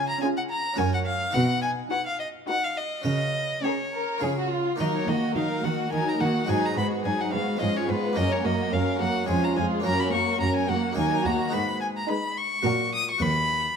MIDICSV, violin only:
0, 0, Header, 1, 2, 480
1, 0, Start_track
1, 0, Key_signature, 6, "major"
1, 0, Tempo, 563910
1, 1147, Time_signature, 3, 2, 24, 8
1, 2111, Tempo, 575816
1, 4511, Tempo, 560748
1, 11707, End_track
2, 0, Start_track
2, 0, Title_t, "Violin"
2, 0, Program_c, 0, 40
2, 78, Note_on_c, 0, 82, 68
2, 178, Note_off_c, 0, 82, 0
2, 183, Note_on_c, 0, 80, 70
2, 233, Note_off_c, 0, 80, 0
2, 315, Note_on_c, 0, 78, 65
2, 362, Note_off_c, 0, 78, 0
2, 424, Note_on_c, 0, 82, 70
2, 661, Note_on_c, 0, 80, 73
2, 674, Note_off_c, 0, 82, 0
2, 784, Note_off_c, 0, 80, 0
2, 800, Note_on_c, 0, 78, 59
2, 845, Note_off_c, 0, 78, 0
2, 898, Note_on_c, 0, 77, 73
2, 1137, Note_on_c, 0, 78, 81
2, 1150, Note_off_c, 0, 77, 0
2, 1376, Note_off_c, 0, 78, 0
2, 1381, Note_on_c, 0, 80, 72
2, 1449, Note_off_c, 0, 80, 0
2, 1622, Note_on_c, 0, 78, 68
2, 1743, Note_off_c, 0, 78, 0
2, 1758, Note_on_c, 0, 77, 64
2, 1864, Note_off_c, 0, 77, 0
2, 1869, Note_on_c, 0, 75, 61
2, 1938, Note_off_c, 0, 75, 0
2, 2116, Note_on_c, 0, 78, 78
2, 2242, Note_on_c, 0, 77, 66
2, 2255, Note_off_c, 0, 78, 0
2, 2357, Note_on_c, 0, 75, 65
2, 2370, Note_off_c, 0, 77, 0
2, 2589, Note_off_c, 0, 75, 0
2, 2594, Note_on_c, 0, 75, 84
2, 3075, Note_on_c, 0, 73, 62
2, 3087, Note_off_c, 0, 75, 0
2, 3559, Note_off_c, 0, 73, 0
2, 4045, Note_on_c, 0, 75, 57
2, 4091, Note_off_c, 0, 75, 0
2, 4174, Note_on_c, 0, 73, 53
2, 4281, Note_on_c, 0, 75, 51
2, 4293, Note_off_c, 0, 73, 0
2, 4513, Note_off_c, 0, 75, 0
2, 4519, Note_on_c, 0, 77, 50
2, 4752, Note_on_c, 0, 78, 53
2, 4765, Note_off_c, 0, 77, 0
2, 4989, Note_off_c, 0, 78, 0
2, 4995, Note_on_c, 0, 80, 65
2, 5132, Note_on_c, 0, 82, 56
2, 5145, Note_off_c, 0, 80, 0
2, 5236, Note_on_c, 0, 78, 57
2, 5249, Note_off_c, 0, 82, 0
2, 5479, Note_on_c, 0, 80, 67
2, 5492, Note_off_c, 0, 78, 0
2, 5618, Note_on_c, 0, 82, 58
2, 5631, Note_off_c, 0, 80, 0
2, 5722, Note_off_c, 0, 82, 0
2, 5727, Note_on_c, 0, 83, 58
2, 5796, Note_off_c, 0, 83, 0
2, 5957, Note_on_c, 0, 80, 59
2, 6092, Note_on_c, 0, 78, 50
2, 6105, Note_off_c, 0, 80, 0
2, 6192, Note_off_c, 0, 78, 0
2, 6197, Note_on_c, 0, 77, 56
2, 6429, Note_off_c, 0, 77, 0
2, 6435, Note_on_c, 0, 75, 67
2, 6572, Note_on_c, 0, 73, 54
2, 6584, Note_off_c, 0, 75, 0
2, 6678, Note_on_c, 0, 71, 63
2, 6691, Note_off_c, 0, 73, 0
2, 6914, Note_on_c, 0, 75, 75
2, 6927, Note_off_c, 0, 71, 0
2, 7046, Note_on_c, 0, 73, 54
2, 7059, Note_off_c, 0, 75, 0
2, 7157, Note_on_c, 0, 75, 63
2, 7170, Note_off_c, 0, 73, 0
2, 7396, Note_on_c, 0, 77, 55
2, 7409, Note_off_c, 0, 75, 0
2, 7633, Note_off_c, 0, 77, 0
2, 7638, Note_on_c, 0, 78, 60
2, 7865, Note_off_c, 0, 78, 0
2, 7870, Note_on_c, 0, 80, 66
2, 8007, Note_on_c, 0, 82, 55
2, 8019, Note_off_c, 0, 80, 0
2, 8108, Note_off_c, 0, 82, 0
2, 8114, Note_on_c, 0, 80, 62
2, 8182, Note_off_c, 0, 80, 0
2, 8359, Note_on_c, 0, 82, 75
2, 8482, Note_on_c, 0, 83, 64
2, 8495, Note_off_c, 0, 82, 0
2, 8588, Note_off_c, 0, 83, 0
2, 8593, Note_on_c, 0, 85, 64
2, 8825, Note_off_c, 0, 85, 0
2, 8830, Note_on_c, 0, 82, 70
2, 8951, Note_off_c, 0, 82, 0
2, 8963, Note_on_c, 0, 80, 60
2, 9079, Note_on_c, 0, 78, 63
2, 9092, Note_off_c, 0, 80, 0
2, 9316, Note_off_c, 0, 78, 0
2, 9321, Note_on_c, 0, 80, 79
2, 9562, Note_on_c, 0, 82, 62
2, 9575, Note_off_c, 0, 80, 0
2, 9793, Note_on_c, 0, 83, 71
2, 9805, Note_off_c, 0, 82, 0
2, 10027, Note_off_c, 0, 83, 0
2, 10032, Note_on_c, 0, 80, 69
2, 10080, Note_off_c, 0, 80, 0
2, 10171, Note_on_c, 0, 82, 67
2, 10279, Note_off_c, 0, 82, 0
2, 10284, Note_on_c, 0, 83, 67
2, 10520, Note_on_c, 0, 85, 74
2, 10533, Note_off_c, 0, 83, 0
2, 10996, Note_off_c, 0, 85, 0
2, 11006, Note_on_c, 0, 87, 83
2, 11117, Note_off_c, 0, 87, 0
2, 11143, Note_on_c, 0, 85, 72
2, 11244, Note_on_c, 0, 83, 83
2, 11257, Note_off_c, 0, 85, 0
2, 11707, Note_off_c, 0, 83, 0
2, 11707, End_track
0, 0, End_of_file